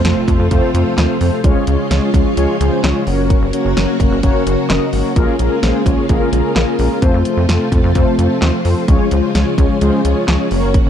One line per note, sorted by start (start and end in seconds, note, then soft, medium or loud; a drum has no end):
0.00 1.42 C3 medium
0.00 1.42 F3 medium
0.00 1.42 A3 medium
0.00 1.42 F4 medium
0.00 impact medium
0.05 0.14 F2 loud
0.05 0.24 A3 medium
0.05 0.24 C4 medium
0.05 0.24 F4 medium
0.05 0.24 A4 medium
0.05 0.24 C5 loud
0.05 snare loud
0.05 closed hi-hat medium
0.28 0.37 F2 loud
0.28 0.47 A3 medium
0.28 0.47 C4 medium
0.28 0.47 F4 medium
0.28 0.47 A4 medium
0.28 0.47 C5 loud
0.28 kick medium
0.28 closed hi-hat medium
0.39 0.49 F2 loud
0.51 0.60 F2 loud
0.51 0.71 A3 loud
0.51 0.71 C4 loud
0.51 0.71 F4 loud
0.51 0.71 A4 loud
0.51 0.71 C5 loud
0.51 kick loud
0.51 closed hi-hat medium
0.74 0.84 F2 loud
0.74 0.94 A3 medium
0.74 0.94 C4 medium
0.74 0.94 F4 medium
0.74 0.94 A4 medium
0.74 0.94 C5 loud
0.74 closed hi-hat medium
0.98 1.07 D#2 loud
0.98 1.17 A3 medium
0.98 1.17 C4 medium
0.98 1.17 F4 medium
0.98 1.17 A4 medium
0.98 1.17 C5 loud
0.98 snare loud
0.98 clap loud
0.98 closed hi-hat medium
1.21 1.30 F2 loud
1.21 1.41 A3 medium
1.21 1.41 C4 medium
1.21 1.41 F4 medium
1.21 1.41 A4 medium
1.21 1.41 C5 loud
1.21 open hi-hat medium
1.44 1.53 C#2 loud
1.44 3.05 F3 medium
1.44 1.64 G#3 loud
1.44 1.64 C#4 loud
1.44 1.64 F4 loud
1.44 3.05 F4 medium
1.44 1.64 G#4 loud
1.44 1.64 C#5 loud
1.44 kick loud
1.44 closed hi-hat medium
1.67 1.77 C#2 loud
1.67 1.87 G#3 medium
1.67 1.87 C#4 medium
1.67 1.87 F4 medium
1.67 1.87 G#4 medium
1.67 1.87 C#5 medium
1.67 closed hi-hat medium
1.91 2.00 C#2 loud
1.91 2.10 G#3 medium
1.91 2.10 C#4 medium
1.91 2.10 F4 medium
1.91 2.10 G#4 medium
1.91 2.10 C#5 medium
1.91 snare loud
1.91 closed hi-hat medium
2.14 2.23 C#2 loud
2.14 2.34 G#3 medium
2.14 2.34 C#4 medium
2.14 2.34 F4 medium
2.14 2.33 G#4 medium
2.14 2.34 C#5 loud
2.14 kick loud
2.14 closed hi-hat medium
2.37 2.46 C#2 loud
2.37 2.57 G#3 loud
2.37 2.57 C#4 loud
2.37 2.57 F4 loud
2.37 2.57 G#4 loud
2.37 2.57 C#5 loud
2.37 closed hi-hat medium
2.60 2.70 C#2 loud
2.60 2.80 G#3 medium
2.60 2.80 C#4 medium
2.60 2.80 F4 medium
2.60 2.80 G#4 medium
2.60 2.80 C5 loud
2.60 closed hi-hat medium
2.84 2.93 C#2 loud
2.84 3.03 G#3 medium
2.84 3.03 C#4 medium
2.84 3.03 F4 medium
2.84 3.03 G#4 medium
2.84 3.03 C#5 loud
2.84 snare loud
2.84 clap medium
2.84 closed hi-hat medium
3.07 3.35 F#1 loud
3.07 5.14 F#3 medium
3.07 5.14 A#3 medium
3.07 3.46 A#3 medium
3.07 3.46 C#4 medium
3.07 5.14 F#4 loud
3.07 3.46 F#4 medium
3.07 3.46 A#4 medium
3.07 3.46 C#5 loud
3.07 open hi-hat medium
3.30 kick loud
3.30 closed hi-hat medium
3.42 3.51 F#1 loud
3.53 3.73 A#3 medium
3.53 3.73 C#4 medium
3.53 3.73 F#4 medium
3.53 3.73 A#4 medium
3.53 3.73 C#5 loud
3.53 closed hi-hat medium
3.65 3.74 F#1 loud
3.77 3.86 F#1 loud
3.77 3.96 A#3 medium
3.77 3.96 C#4 medium
3.77 3.96 F#4 medium
3.77 3.96 A#4 medium
3.77 3.96 C#5 loud
3.77 snare loud
3.77 closed hi-hat medium
4.00 4.09 F#1 loud
4.00 4.20 A#3 medium
4.00 4.20 C#4 medium
4.00 4.20 F#4 medium
4.00 4.20 A#4 medium
4.00 4.20 C#5 loud
4.00 kick loud
4.00 closed hi-hat medium
4.12 4.21 F#1 loud
4.23 4.33 F#1 loud
4.23 4.43 A#3 loud
4.23 4.43 C#4 loud
4.23 4.43 F#4 loud
4.23 4.43 A#4 loud
4.23 4.43 C#5 loud
4.23 kick loud
4.23 closed hi-hat medium
4.46 4.56 F#1 loud
4.46 4.66 A#3 medium
4.46 4.66 C#4 medium
4.46 4.66 F#4 medium
4.46 4.66 A#4 medium
4.46 4.66 C#5 loud
4.46 closed hi-hat medium
4.70 4.79 F#1 medium
4.70 4.89 A#3 medium
4.70 4.89 C#4 medium
4.70 4.89 F#4 medium
4.70 4.89 A#4 medium
4.70 4.89 D#5 loud
4.70 snare loud
4.70 clap loud
4.70 closed hi-hat medium
4.93 5.02 G#1 loud
4.93 5.13 A#3 medium
4.93 5.13 C#4 medium
4.93 5.13 F#4 medium
4.93 5.13 A#4 medium
4.93 5.13 C#5 medium
4.93 open hi-hat medium
5.16 5.25 A#1 loud
5.16 7.00 G#3 medium
5.16 5.36 A#3 loud
5.16 7.00 A#3 medium
5.16 5.36 C#4 loud
5.16 5.36 F4 loud
5.16 10.47 F4 medium
5.16 5.36 G#4 loud
5.16 5.36 A#4 loud
5.16 kick loud
5.16 closed hi-hat medium
5.39 5.49 A#1 medium
5.39 5.59 A#3 medium
5.39 5.59 C#4 medium
5.39 5.59 F4 medium
5.39 5.59 G#4 medium
5.39 5.59 A#4 loud
5.39 closed hi-hat medium
5.63 5.72 A#1 loud
5.63 5.82 A#3 medium
5.63 5.82 C#4 medium
5.63 5.82 F4 medium
5.63 5.82 G#4 medium
5.63 5.82 C5 loud
5.63 snare loud
5.63 closed hi-hat medium
5.86 5.95 A#1 loud
5.86 6.06 A#3 medium
5.86 6.06 C#4 medium
5.86 6.06 F4 medium
5.86 6.06 G#4 medium
5.86 6.06 C#5 loud
5.86 kick loud
5.86 closed hi-hat medium
6.09 6.19 A#1 loud
6.09 6.29 A#3 loud
6.09 6.29 C#4 loud
6.09 6.29 F4 loud
6.09 6.29 G#4 loud
6.09 6.29 A#4 loud
6.09 kick loud
6.09 closed hi-hat medium
6.33 6.42 A#1 loud
6.33 6.52 A#3 medium
6.33 6.52 C#4 medium
6.33 6.52 F4 medium
6.33 6.52 G#4 medium
6.33 6.52 A#4 loud
6.33 closed hi-hat medium
6.56 6.65 A#1 loud
6.56 6.75 A#3 medium
6.56 6.75 C#4 medium
6.56 6.75 F4 medium
6.56 6.75 G#4 medium
6.56 6.75 A#4 loud
6.56 snare loud
6.56 clap loud
6.56 closed hi-hat medium
6.79 6.88 A#1 loud
6.79 6.99 A#3 medium
6.79 6.99 C#4 medium
6.79 6.99 F4 medium
6.79 6.99 G#4 medium
6.79 6.99 A#4 loud
6.79 open hi-hat medium
7.02 7.11 F2 loud
7.02 8.86 C3 medium
7.02 10.48 F3 medium
7.02 8.87 A3 medium
7.02 7.22 A3 loud
7.02 7.22 C4 loud
7.02 7.22 F4 loud
7.02 7.22 A4 loud
7.02 7.22 C5 loud
7.02 kick loud
7.02 closed hi-hat medium
7.14 7.23 F2 loud
7.25 7.45 A3 medium
7.25 7.45 C4 medium
7.25 7.45 F4 medium
7.25 7.45 A4 medium
7.25 7.45 C5 loud
7.25 closed hi-hat medium
7.37 7.46 F2 loud
7.49 7.58 F2 loud
7.49 7.68 A3 medium
7.49 7.68 C4 medium
7.49 7.68 F4 medium
7.49 7.68 A4 medium
7.49 7.68 C5 loud
7.49 snare loud
7.49 closed hi-hat medium
7.72 7.81 F2 loud
7.72 7.92 A3 medium
7.72 7.92 C4 medium
7.72 7.92 F4 medium
7.72 7.92 A4 medium
7.72 7.92 C5 loud
7.72 kick loud
7.72 closed hi-hat medium
7.84 7.93 F2 loud
7.95 8.05 F2 loud
7.95 8.15 A3 loud
7.95 8.15 C4 loud
7.95 8.15 F4 loud
7.95 8.15 A4 loud
7.95 8.15 C5 loud
7.95 kick loud
7.95 closed hi-hat medium
8.19 8.28 F2 loud
8.19 8.38 A3 medium
8.19 8.38 C4 medium
8.19 8.38 F4 medium
8.19 8.38 A4 medium
8.19 8.38 C5 loud
8.19 closed hi-hat medium
8.42 8.51 D#2 loud
8.42 8.61 A3 medium
8.42 8.61 C4 medium
8.42 8.61 F4 medium
8.42 8.61 A4 medium
8.42 8.61 C5 loud
8.42 snare loud
8.42 clap loud
8.42 closed hi-hat medium
8.65 8.74 F2 loud
8.65 8.85 A3 medium
8.65 8.85 C4 medium
8.65 8.85 F4 medium
8.65 8.85 A4 medium
8.65 8.85 C5 loud
8.65 open hi-hat medium
8.88 8.98 C#2 loud
8.88 10.49 G#3 medium
8.88 9.08 G#3 loud
8.88 9.08 C#4 loud
8.88 9.08 F4 loud
8.88 9.08 G#4 loud
8.88 9.08 C#5 loud
8.88 kick loud
8.88 closed hi-hat medium
9.11 9.21 C#2 loud
9.11 9.31 G#3 medium
9.11 9.31 C#4 medium
9.11 9.31 F4 medium
9.11 9.31 G#4 medium
9.11 9.31 C5 loud
9.11 closed hi-hat medium
9.35 9.44 C#2 loud
9.35 9.54 G#3 medium
9.35 9.54 C#4 medium
9.35 9.54 F4 medium
9.35 9.54 G#4 medium
9.35 9.54 C#5 loud
9.35 snare loud
9.35 closed hi-hat medium
9.58 9.67 C#2 loud
9.58 9.78 G#3 medium
9.58 9.78 C#4 medium
9.58 9.78 F4 medium
9.58 9.78 G#4 medium
9.58 9.78 C#5 loud
9.58 kick loud
9.58 closed hi-hat medium
9.81 9.91 C#2 loud
9.81 10.01 G#3 loud
9.81 10.01 C#4 loud
9.81 10.01 F4 loud
9.81 10.01 G#4 loud
9.81 10.01 C5 loud
9.81 closed hi-hat medium
10.05 10.14 C#2 loud
10.05 10.24 G#3 medium
10.05 10.24 C#4 medium
10.05 10.24 F4 medium
10.05 10.24 G#4 medium
10.05 10.24 C#5 loud
10.05 closed hi-hat medium
10.28 10.37 C#2 loud
10.28 10.47 G#3 medium
10.28 10.47 C#4 medium
10.28 10.47 F4 medium
10.28 10.47 G#4 medium
10.28 10.47 C#5 loud
10.28 snare loud
10.28 clap medium
10.28 closed hi-hat medium
10.51 10.79 F#1 loud
10.51 10.90 F#3 medium
10.51 10.90 A#3 medium
10.51 10.90 C#4 medium
10.51 10.90 F#4 medium
10.51 10.90 A#4 medium
10.51 10.90 C#5 loud
10.51 open hi-hat medium
10.74 kick loud
10.74 closed hi-hat medium
10.86 10.90 F#1 loud